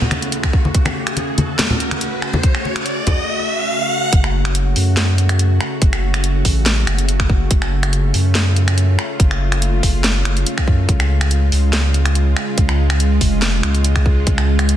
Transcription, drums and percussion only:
0.02 low conga
0.11 finger snap, closed hi-hat, muted conga
0.22 closed hi-hat
0.32 closed hi-hat
0.43 finger snap, kick, muted conga
0.53 kick
0.65 high conga
0.75 kick, closed hi-hat
0.85 finger snap, muted conga
1.07 finger snap, closed hi-hat
1.17 closed hi-hat, muted conga
1.38 closed hi-hat, high conga
1.59 snare, closed hi-hat, muted conga
1.70 low conga
1.80 closed hi-hat
1.91 finger snap, closed hi-hat, muted conga
2.01 closed hi-hat
2.22 finger snap
2.33 muted conga, high conga
2.43 kick, closed hi-hat
2.55 finger snap
2.65 muted conga
2.76 finger snap, closed hi-hat
2.86 closed hi-hat
3.07 kick, closed hi-hat, muted conga, high conga
4.13 kick, closed hi-hat
4.24 finger snap
4.45 finger snap, closed hi-hat
4.55 closed hi-hat
4.76 open hi-hat
4.97 snare, closed hi-hat
5.18 closed hi-hat
5.29 finger snap, closed hi-hat
5.39 closed hi-hat
5.61 finger snap
5.82 kick, closed hi-hat
5.93 finger snap
6.14 finger snap, closed hi-hat
6.24 closed hi-hat
6.45 kick, open hi-hat
6.66 snare, closed hi-hat
6.87 finger snap, closed hi-hat
6.99 closed hi-hat
7.09 closed hi-hat
7.20 finger snap, kick
7.30 kick
7.51 kick, closed hi-hat
7.62 finger snap
7.83 finger snap, closed hi-hat
7.93 closed hi-hat
8.14 open hi-hat
8.35 snare, closed hi-hat
8.56 closed hi-hat
8.68 finger snap, closed hi-hat
8.78 closed hi-hat
8.99 finger snap
9.20 kick, closed hi-hat
9.31 finger snap
9.52 finger snap, closed hi-hat
9.62 closed hi-hat
9.83 kick, open hi-hat
10.04 snare, closed hi-hat
10.25 finger snap, closed hi-hat
10.37 closed hi-hat
10.46 closed hi-hat
10.58 finger snap, kick
10.68 kick
10.89 kick, closed hi-hat
11.00 finger snap
11.21 finger snap, closed hi-hat
11.31 closed hi-hat
11.52 open hi-hat
11.73 snare, closed hi-hat
11.94 closed hi-hat
12.06 finger snap, closed hi-hat
12.15 closed hi-hat
12.37 finger snap
12.58 kick, closed hi-hat
12.69 finger snap
12.90 finger snap, closed hi-hat
13.00 closed hi-hat
13.21 kick, open hi-hat
13.42 snare, closed hi-hat
13.63 finger snap, closed hi-hat
13.75 closed hi-hat
13.84 closed hi-hat
13.96 finger snap, kick
14.06 kick
14.27 kick, closed hi-hat
14.38 finger snap
14.59 finger snap, closed hi-hat
14.69 closed hi-hat

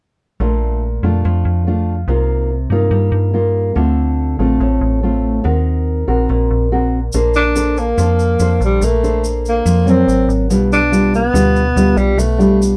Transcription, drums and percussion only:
7.13 shaker
7.34 shaker
7.56 shaker
7.77 shaker
7.98 shaker
8.19 shaker
8.39 shaker
8.61 shaker
8.82 shaker
9.04 shaker
9.24 shaker
9.46 shaker
9.66 shaker
9.87 shaker
10.09 shaker
10.30 shaker
10.51 shaker
10.72 shaker
10.93 shaker
11.14 shaker
11.35 shaker
11.56 shaker
11.77 shaker
11.97 shaker
12.19 shaker
12.40 shaker
12.62 shaker

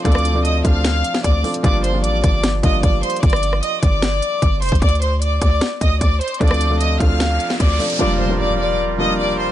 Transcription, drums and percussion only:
0.05 kick, closed hi-hat
0.12 cross-stick, closed hi-hat
0.18 closed hi-hat
0.25 closed hi-hat
0.45 closed hi-hat
0.65 kick, closed hi-hat
0.84 snare, closed hi-hat
1.04 closed hi-hat
1.14 snare
1.24 kick, closed hi-hat
1.44 closed hi-hat, open hi-hat
1.54 closed hi-hat
1.64 kick, closed hi-hat
1.84 closed hi-hat
2.04 closed hi-hat
2.24 kick, closed hi-hat
2.44 snare, closed hi-hat
2.63 kick, closed hi-hat
2.83 kick, closed hi-hat
3.03 closed hi-hat
3.10 closed hi-hat
3.16 closed hi-hat
3.23 kick, closed hi-hat
3.30 cross-stick, closed hi-hat
3.36 closed hi-hat
3.43 closed hi-hat
3.53 cross-stick
3.63 closed hi-hat
3.83 kick, closed hi-hat
4.02 snare, closed hi-hat
4.22 closed hi-hat
4.42 kick, closed hi-hat
4.62 closed hi-hat, open hi-hat
4.69 kick, closed hi-hat
4.75 closed hi-hat
4.82 kick, closed hi-hat
4.89 closed hi-hat
4.95 closed hi-hat
5.02 closed hi-hat
5.22 closed hi-hat
5.42 kick, closed hi-hat
5.61 snare, closed hi-hat
5.81 kick, closed hi-hat
6.01 kick, closed hi-hat
6.21 closed hi-hat
6.28 closed hi-hat
6.34 closed hi-hat
6.41 kick, closed hi-hat
6.47 cross-stick, closed hi-hat
6.54 closed hi-hat
6.61 closed hi-hat
6.81 closed hi-hat
7.00 kick, closed hi-hat
7.20 snare, closed hi-hat
7.40 closed hi-hat
7.50 snare
7.60 kick, closed hi-hat
7.80 closed hi-hat, open hi-hat
7.90 closed hi-hat

